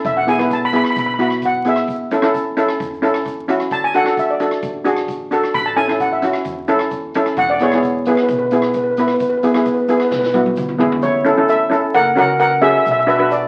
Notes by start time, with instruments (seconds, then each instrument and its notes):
0.05 upright bass E1, steel pan E5, kick, closed hi-hat, shaker
0.17 steel pan F#5
0.27 steel pan B3 E4 G#4 G#5, closed hi-hat, shaker
0.39 steel pan B3 E4 B4, cross-stick, closed hi-hat
0.51 steel pan A5, kick, closed hi-hat, shaker
0.62 steel pan B5, shaker
0.73 steel pan B3 E4 G#4 B5, closed hi-hat, shaker
0.84 steel pan B5, cross-stick, closed hi-hat
0.90 steel pan B5
0.96 upright bass B1, steel pan B5, kick, closed hi-hat, shaker
1.06 steel pan B5
1.14 steel pan B5
1.19 steel pan B3 E4 F#4 B5, closed hi-hat
1.28 steel pan B5, cross-stick, closed hi-hat
1.42 steel pan F#5, kick, closed hi-hat, shaker
1.65 steel pan B3 E4 G#4 E5, closed hi-hat, shaker
1.76 cross-stick, closed hi-hat
1.87 upright bass A1, kick, closed hi-hat, shaker
2.11 steel pan C#4 E4 A4, closed hi-hat, shaker
2.22 steel pan C#4 E4 A4, cross-stick, closed hi-hat, shaker
2.34 kick, closed hi-hat, shaker
2.57 steel pan C#4 E4 A4, closed hi-hat, shaker
2.69 cross-stick, closed hi-hat, shaker
2.80 upright bass E2, kick, closed hi-hat, shaker
2.94 shaker
3.02 steel pan C#4 E4 A4, closed hi-hat, shaker
3.14 cross-stick, closed hi-hat, shaker
3.25 kick, closed hi-hat, shaker
3.48 steel pan C#4 E4 F#4, closed hi-hat, shaker
3.60 cross-stick, closed hi-hat
3.71 upright bass D2, steel pan A5, kick, closed hi-hat, shaker
3.84 steel pan G#5
3.94 steel pan D4 F#4 A4 F#5, closed hi-hat, shaker
4.04 steel pan D4 F#4 A4, cross-stick, closed hi-hat
4.17 steel pan E5, kick, closed hi-hat, shaker
4.30 steel pan D5
4.40 steel pan D4 F#4 A4, closed hi-hat, shaker
4.51 cross-stick, closed hi-hat
4.62 upright bass A1, kick, closed hi-hat, shaker
4.85 steel pan D4 F#4 G#4, closed hi-hat, shaker
4.97 cross-stick, closed hi-hat
5.08 kick, closed hi-hat, shaker
5.31 steel pan D4 F#4 A4, closed hi-hat, shaker
5.44 cross-stick, closed hi-hat
5.54 upright bass A1, steel pan B5, kick, closed hi-hat, shaker
5.66 steel pan A5
5.76 steel pan C#4 E4 A4 G#5, closed hi-hat, shaker
5.88 steel pan C#4 E4 A4, cross-stick, closed hi-hat
6.00 steel pan F#5, kick, closed hi-hat, shaker
6.12 steel pan E5, shaker
6.22 steel pan C#4 E4 F#4, closed hi-hat, shaker
6.33 cross-stick, closed hi-hat
6.44 upright bass E2, kick, closed hi-hat, shaker
6.68 steel pan C#4 E4 A4, closed hi-hat, shaker
6.79 cross-stick, closed hi-hat
6.91 kick, closed hi-hat, shaker
7.14 steel pan C#4 E4 A4, closed hi-hat, shaker
7.26 cross-stick, closed hi-hat
7.37 upright bass E1, steel pan F#5, kick, closed hi-hat, shaker
7.50 steel pan D5
7.59 steel pan B3 E4 G#4 C#5, closed hi-hat, shaker
7.72 steel pan B3 E4 G#4, cross-stick, closed hi-hat
7.83 kick, closed hi-hat, shaker
7.95 shaker
8.06 steel pan B3 E4 G#4 B4, closed hi-hat, shaker
8.15 steel pan B4, cross-stick, closed hi-hat
8.23 steel pan B4
8.28 upright bass B1, steel pan B4, kick, closed hi-hat, shaker
8.38 steel pan B4
8.46 steel pan B4
8.51 steel pan B3 E4 G#4 B4, closed hi-hat, shaker
8.61 steel pan B4, cross-stick, closed hi-hat
8.69 steel pan B4
8.73 steel pan B4, kick, closed hi-hat, shaker
8.84 steel pan B4
8.91 steel pan B4
8.97 steel pan B3 E4 B4, closed hi-hat, shaker
9.07 steel pan B4, cross-stick, closed hi-hat
9.14 steel pan B4
9.20 upright bass E1, steel pan B4, kick, closed hi-hat, shaker
9.29 steel pan B4
9.37 steel pan B4
9.43 steel pan B3 E4 G#4 B4, closed hi-hat, shaker
9.52 steel pan B3 E4 G#4 B4, cross-stick, closed hi-hat
9.56 steel pan B4, shaker
9.65 steel pan B4, kick, closed hi-hat, shaker
9.74 steel pan B4, shaker
9.81 steel pan B4
9.88 steel pan B3 E4 G#4 B4, closed hi-hat, shaker
9.97 steel pan B4, cross-stick, closed hi-hat
10.05 steel pan B4
10.11 upright bass B1, steel pan B4, kick, snare, shaker
10.19 steel pan B4
10.23 steel pan B4, snare
10.34 steel pan B3 E4 F#4 B4, high tom, shaker
10.45 high tom, shaker
10.56 kick, mid tom, shaker
10.68 mid tom, shaker
10.78 steel pan B3 E4 G#4, floor tom, shaker
10.92 floor tom
11.02 upright bass A1, steel pan E4 C#5, shaker
11.25 steel pan C#4 E4 A4, shaker
11.37 steel pan C#4 E4 A4
11.49 steel pan A4 E5, shaker
11.70 steel pan C#4 E4 A4, shaker
11.94 upright bass F#1, steel pan A#4 F#5, shaker
12.16 upright bass C#2, steel pan C#4 F#4 A#4 F#5, shaker
12.40 steel pan A#4 F#5, shaker
12.62 steel pan C#4 F#4 G#4 E5, shaker
12.69 steel pan E5
12.77 steel pan E5
12.84 upright bass B1, steel pan E5, shaker
12.91 steel pan E5
12.99 steel pan E5
13.07 steel pan D4 F#4 B4 E5, shaker
13.16 steel pan D4 F#4 B4 E5
13.31 steel pan F#4 D5, shaker